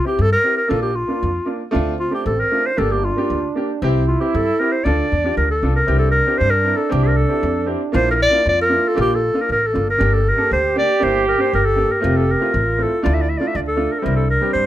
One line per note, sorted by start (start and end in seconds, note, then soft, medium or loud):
0.05 0.24 C4 medium
0.05 0.25 E4 medium
0.05 0.25 G4 medium
0.05 0.23 G4 medium
0.19 0.34 G2 medium
0.19 0.32 A4 loud
0.32 0.56 A#4 loud
0.44 0.57 C4 medium
0.44 0.57 E4 medium
0.44 0.58 G4 medium
0.57 0.71 A#4 medium
0.68 1.02 A#1 loud
0.68 0.88 A#3 medium
0.68 0.89 D4 medium
0.68 0.90 F4 medium
0.68 0.82 A4 medium
0.82 0.97 G4 medium
0.96 1.48 F4 medium
1.08 1.28 A#3 medium
1.08 1.28 D4 soft
1.08 1.29 F4 medium
1.23 1.38 F2 medium
1.46 1.60 A#3 medium
1.46 1.60 D4 medium
1.46 1.60 F4 medium
1.71 2.06 D2 medium
1.71 1.92 A3 loud
1.71 2.73 C4 medium
1.71 1.92 D4 medium
1.71 1.93 F4 medium
2.00 2.12 F4 medium
2.11 2.31 A3 soft
2.11 2.31 D4 medium
2.11 2.32 G4 medium
2.11 2.26 G4 medium
2.26 2.41 A1 medium
2.26 2.41 A4 medium
2.40 2.68 A#4 medium
2.51 2.64 A3 medium
2.51 2.65 D4 medium
2.51 2.65 F4 medium
2.66 2.80 C5 medium
2.72 2.80 E4 medium
2.77 3.09 G1 loud
2.77 2.97 A#3 medium
2.77 2.97 D4 medium
2.77 3.85 D4 medium
2.77 2.98 G4 medium
2.77 2.93 A4 medium
2.91 3.06 G4 medium
3.04 3.56 F4 medium
3.16 3.36 A#3 medium
3.16 3.36 D4 medium
3.16 3.37 G4 medium
3.30 3.45 D2 medium
3.55 3.68 A#3 medium
3.55 3.69 D4 medium
3.55 3.69 G4 medium
3.82 4.13 C2 loud
3.82 4.01 C4 medium
3.82 4.02 E4 medium
3.82 4.86 E4 loud
3.82 4.02 G4 loud
4.08 4.20 F4 medium
4.20 4.40 C4 medium
4.20 4.40 E4 medium
4.20 4.37 G4 medium
4.20 4.41 G4 medium
4.34 4.50 G2 medium
4.34 4.61 A4 medium
4.59 4.72 C4 medium
4.59 4.73 E4 soft
4.59 4.73 G4 medium
4.59 4.74 A#4 medium
4.72 4.86 C5 medium
4.84 5.01 D2 medium
4.84 5.62 D4 medium
4.84 5.04 D4 medium
4.84 5.05 F4 medium
4.84 5.05 A4 medium
4.84 5.36 D5 medium
5.12 5.35 E2 medium
5.24 5.43 D4 medium
5.24 5.44 F4 medium
5.24 5.44 G4 medium
5.37 5.60 D2 medium
5.37 5.49 A#4 medium
5.51 5.74 A4 medium
5.62 5.86 C2 medium
5.62 5.75 D4 medium
5.62 5.76 F4 medium
5.62 5.76 A4 medium
5.76 5.98 A#4 medium
5.84 6.07 C4 medium
5.84 5.93 C#4 soft
5.84 6.07 E4 medium
5.88 6.19 C2 medium
5.88 7.97 D4 medium
5.88 6.08 G4 medium
5.99 6.10 A4 medium
6.11 6.40 A#4 medium
6.27 6.46 C4 medium
6.27 6.46 E4 soft
6.27 6.46 G4 medium
6.38 6.71 G2 medium
6.38 6.52 C5 loud
6.50 6.78 A#4 loud
6.64 6.78 C4 medium
6.64 6.78 E4 medium
6.64 6.78 A#4 medium
6.77 6.93 A4 medium
6.89 7.23 C2 loud
6.89 7.10 C4 medium
6.89 7.10 E4 medium
6.89 7.10 G4 medium
6.89 7.05 G4 medium
7.03 7.18 A#4 medium
7.17 7.68 A4 medium
7.29 7.48 C4 medium
7.29 7.49 E4 medium
7.29 7.49 G4 medium
7.43 7.74 F2 medium
7.66 7.80 C4 medium
7.66 7.81 E4 medium
7.66 7.81 G4 medium
7.92 8.25 A#1 loud
7.92 8.12 A#3 medium
7.92 8.13 D4 medium
7.92 8.45 E4 loud
7.92 8.13 F4 loud
7.92 8.07 C5 loud
8.11 8.13 A#4 medium
8.15 8.20 A#4 medium
8.22 8.45 D5 loud
8.30 8.50 A#3 medium
8.30 8.51 D4 medium
8.30 8.51 F4 medium
8.44 8.76 F2 medium
8.44 9.72 F4 loud
8.49 8.59 D5 medium
8.62 8.90 A#4 medium
8.69 8.83 A#3 medium
8.69 8.83 D4 medium
8.69 8.83 E4 medium
8.88 8.99 A4 medium
8.94 9.28 A#1 loud
8.94 9.15 A#3 medium
8.94 9.15 D4 medium
8.94 9.16 G4 medium
9.01 9.17 G4 loud
9.15 9.43 A4 medium
9.34 9.53 A#3 soft
9.34 9.54 D4 medium
9.34 9.54 F4 medium
9.41 9.51 A#4 medium
9.49 9.71 A1 medium
9.49 9.68 A#4 medium
9.66 9.89 A4 medium
9.73 9.97 G1 medium
9.73 9.86 A#3 medium
9.73 9.86 D4 medium
9.73 9.87 F4 medium
9.90 10.15 A#4 medium
9.98 10.31 G1 loud
9.98 10.18 A#3 medium
9.98 10.18 D4 medium
9.98 11.99 G4 loud
9.98 10.18 G4 medium
10.14 10.30 A4 medium
10.29 10.52 A#4 medium
10.36 10.56 A#3 medium
10.36 10.56 D4 medium
10.36 10.57 A4 medium
10.51 10.81 D2 medium
10.51 10.75 C5 medium
10.75 10.88 A#3 medium
10.75 10.88 D4 medium
10.75 10.89 G4 medium
10.75 11.05 D5 medium
11.00 11.32 G1 medium
11.00 11.19 A#3 medium
11.00 11.19 D4 medium
11.00 11.20 E4 medium
11.00 11.27 C5 medium
11.28 11.43 A#4 medium
11.37 11.57 A#3 medium
11.37 11.58 D4 medium
11.37 11.58 G4 medium
11.41 11.53 C5 medium
11.53 11.83 G1 medium
11.53 11.67 A#4 medium
11.65 11.93 A4 medium
11.76 11.89 A#3 medium
11.76 11.89 D4 soft
11.76 11.90 G4 medium
11.92 12.18 A#4 medium
12.00 12.34 F1 loud
12.00 12.20 A3 medium
12.00 12.21 C4 medium
12.00 12.21 F4 medium
12.00 12.54 G4 loud
12.17 12.33 A4 medium
12.31 12.84 A#4 medium
12.40 12.59 A3 medium
12.40 12.59 C4 medium
12.40 12.60 F4 medium
12.53 12.84 A1 medium
12.53 13.03 F4 medium
12.78 12.91 A3 medium
12.78 12.91 C4 soft
12.78 12.91 E4 medium
12.83 13.04 A4 medium
13.02 13.35 D2 loud
13.02 13.22 A3 medium
13.02 13.22 D4 medium
13.02 13.55 E4 loud
13.02 13.22 F4 medium
13.02 13.15 D5 medium
13.14 13.23 E5 medium
13.21 13.31 D5 medium
13.29 13.39 E5 medium
13.38 13.60 A3 medium
13.38 13.60 D4 soft
13.38 13.60 F4 medium
13.38 13.49 D5 medium
13.47 13.58 E5 medium
13.54 13.85 D2 medium
13.54 14.03 D4 medium
13.54 13.58 D5 medium
13.68 13.93 A4 medium
13.76 13.90 A3 medium
13.76 13.91 D4 medium
13.76 13.91 F4 medium
13.92 14.00 A#4 medium
13.99 14.22 G3 medium
13.99 14.22 C4 medium
13.99 14.06 A4 medium
14.03 14.36 C2 loud
14.03 14.66 D4 medium
14.03 14.23 E4 medium
14.03 14.16 A#4 medium
14.16 14.28 A4 medium
14.30 14.52 A#4 medium
14.41 14.61 G3 medium
14.41 14.61 C4 medium
14.41 14.61 G4 medium
14.53 14.66 G2 medium
14.53 14.66 C5 loud